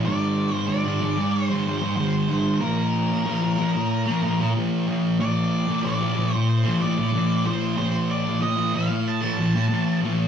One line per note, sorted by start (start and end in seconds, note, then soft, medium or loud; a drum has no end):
0.04 0.66 G#2 loud
0.04 0.54 D#3 loud
0.04 0.50 G#3 loud
0.04 0.66 D5 loud
0.51 0.68 D#3 medium
0.51 0.69 G#3 medium
0.67 0.99 G#2 loud
0.67 0.86 D#3 loud
0.67 0.83 G#3 loud
0.67 1.34 D5 loud
0.84 1.00 D#3 medium
0.84 1.02 G#3 medium
1.00 1.49 G#2 medium
1.00 1.17 D#3 medium
1.00 1.16 G#3 medium
1.17 muted distorted electric guitar stroke soft
1.31 1.95 C5 loud
1.49 1.66 D#3 medium
1.49 1.67 G#3 medium
1.65 1.95 G#2 medium
1.65 1.81 D#3 medium
1.65 1.81 G#3 medium
1.82 muted distorted electric guitar stroke medium
1.96 2.27 G#2 loud
1.96 2.29 D#3 loud
1.96 2.31 G#3 loud
1.96 2.60 C5 medium
2.29 2.59 G#2 medium
2.29 2.60 D#3 medium
2.29 2.61 G#3 medium
2.60 3.24 A#2 loud
2.60 3.11 F3 medium
2.60 3.08 A#3 loud
2.60 4.50 A#4 medium
3.10 3.26 F3 medium
3.10 3.28 A#3 medium
3.25 3.56 A#2 medium
3.25 3.43 F3 loud
3.25 3.40 A#3 loud
3.41 3.58 F3 medium
3.41 3.60 A#3 medium
3.58 4.06 A#2 medium
3.58 3.74 F3 medium
3.58 3.74 A#3 medium
3.75 muted distorted electric guitar stroke soft
4.06 4.22 F3 medium
4.06 4.24 A#3 medium
4.21 4.53 A#2 medium
4.21 4.39 F3 medium
4.21 4.37 A#3 medium
4.39 muted distorted electric guitar stroke medium
4.54 4.86 A#2 loud
4.54 4.88 F3 loud
4.54 4.90 A#3 loud
4.88 5.18 A#2 medium
4.88 5.18 F3 medium
4.88 5.19 A#3 medium
5.19 5.83 A#2 medium
5.19 5.70 F3 loud
5.19 5.67 A#3 loud
5.19 5.84 D5 medium
5.67 5.84 F3 medium
5.67 5.86 A#3 medium
5.83 6.15 A#2 medium
5.83 6.03 F3 loud
5.83 5.99 A#3 loud
5.83 6.35 D5 medium
6.00 6.17 F3 medium
6.00 6.19 A#3 medium
6.16 6.64 A#2 medium
6.16 6.33 F3 medium
6.16 6.32 A#3 medium
6.33 6.49 C5 medium
6.33 muted distorted electric guitar stroke soft
6.49 6.82 C5 medium
6.64 6.81 F3 medium
6.64 6.83 A#3 medium
6.80 7.11 A#2 medium
6.80 6.97 F3 medium
6.80 6.96 A#3 medium
6.80 7.47 D5 medium
6.98 muted distorted electric guitar stroke medium
7.12 7.44 A#2 loud
7.12 7.46 F3 loud
7.12 7.47 A#3 loud
7.45 7.75 A#2 medium
7.45 7.77 F3 medium
7.45 7.78 A#3 medium
7.45 7.77 C5 medium
7.76 8.40 A#2 medium
7.76 8.27 F3 medium
7.76 8.23 A#3 loud
7.76 8.11 C5 loud
8.10 8.42 D5 medium
8.24 8.42 F3 medium
8.24 8.43 A#3 medium
8.41 8.71 A#2 loud
8.41 8.59 F3 medium
8.41 8.55 A#3 loud
8.41 8.75 D#5 medium
8.57 8.73 F3 medium
8.57 8.75 A#3 medium
8.73 9.21 A#2 medium
8.73 8.90 F3 medium
8.73 8.89 A#3 loud
8.73 9.08 F5 loud
8.90 muted distorted electric guitar stroke medium
9.08 9.99 A5 loud
9.21 9.38 F3 medium
9.21 9.40 A#3 medium
9.37 9.68 A#2 medium
9.37 9.54 F3 medium
9.37 9.54 A#3 medium
9.55 muted distorted electric guitar stroke medium
9.69 10.00 A#2 loud
9.69 10.03 F3 loud
9.69 10.04 A#3 loud
10.02 10.28 A#2 medium
10.02 10.28 F3 loud
10.02 10.28 A#3 loud